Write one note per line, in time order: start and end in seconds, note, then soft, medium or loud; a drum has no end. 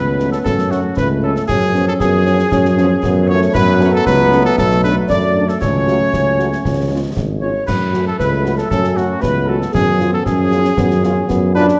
0.00 0.37 C#2 medium
0.00 1.44 A3 medium
0.00 0.93 B3 medium
0.00 1.44 C#4 medium
0.00 0.30 B4 loud
0.19 0.29 F#3 medium
0.19 0.29 A3 medium
0.19 0.29 C#4 medium
0.19 snare medium
0.32 0.38 A4 medium
0.32 0.38 A4 loud
0.32 snare medium
0.45 0.89 F#2 medium
0.45 0.72 A4 loud
0.45 0.69 A4 loud
0.45 concert bass drum medium
0.45 snare medium
0.59 snare medium
0.70 0.80 F#3 medium
0.70 0.80 A3 medium
0.70 0.80 C#4 medium
0.70 0.97 F#4 medium
0.70 0.97 F#4 loud
0.70 snare medium
0.96 1.40 C#2 medium
0.96 1.50 A3 medium
0.96 1.08 B4 loud
0.96 1.09 B4 loud
0.96 concert bass drum medium
0.96 snare medium
1.22 1.33 F#3 medium
1.22 1.33 A3 medium
1.22 1.33 C#4 medium
1.22 1.47 A4 medium
1.22 1.47 A4 loud
1.36 snare medium
1.47 1.92 F#2 loud
1.47 3.56 F3 medium
1.47 3.51 C#4 medium
1.47 2.02 C#4 loud
1.47 1.84 G#4 loud
1.47 1.85 G#4 loud
1.47 concert bass drum medium
1.47 snare medium
1.47 crash soft
1.75 1.84 F3 medium
1.75 1.84 B3 medium
1.75 1.84 C#4 medium
1.75 snare medium
1.87 1.93 A4 medium
1.87 1.94 A4 loud
2.00 2.43 F#2 loud
2.00 2.26 B3 medium
2.00 3.25 G#4 loud
2.00 concert bass drum medium
2.00 snare medium
2.26 2.36 F3 medium
2.26 2.36 B3 medium
2.26 2.36 C#4 medium
2.26 2.39 C#4 medium
2.26 snare medium
2.39 snare medium
2.52 2.95 F#2 loud
2.52 3.07 C#4 loud
2.52 concert bass drum medium
2.52 snare medium
2.65 snare medium
2.77 2.86 F3 medium
2.77 2.86 B3 medium
2.77 2.86 C#4 medium
2.77 snare medium
3.03 3.47 F#2 loud
3.03 3.30 B3 loud
3.03 concert bass drum medium
3.03 snare medium
3.29 3.38 F3 medium
3.29 3.58 A3 loud
3.29 3.39 B3 medium
3.29 3.39 C#4 medium
3.29 3.41 C#5 loud
3.29 3.55 C#5 loud
3.42 snare medium
3.54 3.98 F#2 loud
3.54 5.45 F#3 loud
3.54 5.45 A3 loud
3.54 5.10 B3 loud
3.54 3.91 B4 loud
3.54 concert bass drum loud
3.54 snare medium
3.54 crash soft
3.80 3.90 F#3 medium
3.80 3.90 A3 medium
3.80 3.90 C#4 loud
3.80 snare medium
3.93 4.07 A4 loud
3.93 4.06 A4 loud
4.06 4.50 C#2 loud
4.06 4.45 B4 loud
4.06 4.43 B4 loud
4.06 concert bass drum medium
4.06 snare medium
4.32 4.41 F#3 medium
4.32 4.41 A3 medium
4.32 4.42 C#4 medium
4.32 snare medium
4.45 4.57 A4 loud
4.45 4.57 A4 medium
4.45 snare medium
4.58 5.02 B1 loud
4.58 4.82 A4 loud
4.58 4.70 A4 loud
4.58 concert bass drum medium
4.58 snare medium
4.71 snare medium
4.84 4.93 F#3 medium
4.84 4.94 A3 medium
4.84 4.93 D4 medium
4.84 4.96 B4 loud
4.84 snare medium
5.10 5.53 F#2 loud
5.10 5.63 A3 medium
5.10 5.46 D5 loud
5.10 5.50 D5 loud
5.10 concert bass drum medium
5.10 snare medium
5.35 5.45 F#3 medium
5.35 5.44 A3 medium
5.35 5.45 D4 medium
5.49 5.62 A4 medium
5.49 5.60 A4 loud
5.49 snare medium
5.61 6.01 C#2 medium
5.61 6.61 F#3 medium
5.61 6.61 A3 medium
5.61 7.42 C#4 loud
5.61 7.12 C#5 loud
5.61 concert bass drum medium
5.61 snare medium
5.61 crash soft
5.87 5.97 F#3 medium
5.87 5.97 A3 medium
5.87 5.97 F#4 medium
5.87 snare medium
6.13 6.56 C#2 medium
6.13 concert bass drum medium
6.13 snare medium
6.39 6.48 F#3 medium
6.39 6.48 A3 medium
6.39 6.48 F#4 medium
6.39 snare medium
6.53 snare medium
6.65 7.08 C#2 medium
6.65 7.43 F3 medium
6.65 7.43 G#3 medium
6.65 concert bass drum medium
6.65 snare medium
6.90 7.00 G#3 medium
6.90 7.00 C#4 medium
6.90 7.00 F4 medium
7.16 7.59 G#1 medium
7.16 concert bass drum medium
7.16 snare medium
7.41 7.51 G#3 medium
7.41 7.50 C#4 medium
7.41 7.50 F4 medium
7.41 7.66 C#5 medium
7.67 8.11 F#2 medium
7.67 9.70 F#3 medium
7.67 9.70 A3 medium
7.67 8.03 B4 loud
7.67 8.07 B4 loud
7.67 concert bass drum medium
7.67 snare medium
7.67 crash medium
7.92 8.02 A3 medium
7.92 8.02 C#4 medium
7.92 8.02 F#4 medium
7.92 snare medium
8.07 8.12 A4 medium
8.07 8.19 A4 loud
8.19 8.62 C#2 medium
8.19 8.68 A3 medium
8.19 8.55 B4 loud
8.19 concert bass drum medium
8.19 snare medium
8.44 8.54 A3 medium
8.44 8.54 C#4 medium
8.44 8.54 F#4 medium
8.44 snare medium
8.58 8.70 A4 medium
8.58 snare medium
8.70 9.14 F#2 medium
8.70 9.19 C#4 medium
8.70 8.98 A4 loud
8.70 8.95 A4 medium
8.70 concert bass drum medium
8.70 snare medium
8.84 snare medium
8.95 9.05 A3 medium
8.95 9.05 C#4 medium
8.95 9.05 F#4 medium
8.95 9.22 F#4 medium
8.95 9.23 F#4 loud
8.95 snare medium
9.21 9.65 C#2 medium
9.21 10.27 B3 medium
9.21 9.46 B4 loud
9.21 9.50 B4 loud
9.21 concert bass drum medium
9.21 snare medium
9.47 9.58 A3 medium
9.47 9.58 C#4 medium
9.47 9.58 F#4 medium
9.47 9.74 A4 medium
9.62 snare medium
9.72 10.17 F#2 loud
9.72 11.76 F3 medium
9.72 11.77 C#4 medium
9.72 10.09 G#4 loud
9.72 10.10 G#4 loud
9.72 concert bass drum loud
9.72 snare medium
9.72 crash soft
10.00 10.09 B3 medium
10.00 10.09 C#4 medium
10.00 10.10 F4 medium
10.00 snare medium
10.12 10.24 A4 medium
10.12 10.25 A4 loud
10.25 10.69 F#2 loud
10.25 10.76 C#4 medium
10.25 11.54 G#4 loud
10.25 11.51 G#4 loud
10.25 concert bass drum medium
10.25 snare medium
10.52 10.61 B3 medium
10.52 10.61 C#4 medium
10.52 10.61 F4 medium
10.52 snare medium
10.65 snare medium
10.77 11.20 F#2 loud
10.77 10.88 B3 loud
10.77 concert bass drum medium
10.77 snare medium
10.91 snare medium
11.03 11.13 B3 medium
11.03 11.27 C#4 medium
11.03 11.13 C#4 medium
11.03 11.13 F4 medium
11.03 snare medium
11.28 11.72 F#2 loud
11.28 11.52 B3 loud
11.28 concert bass drum medium
11.28 snare medium
11.55 11.65 B3 medium
11.55 11.65 C#4 medium
11.55 11.80 D4 loud
11.55 11.65 F4 medium
11.55 11.67 B4 loud
11.68 snare medium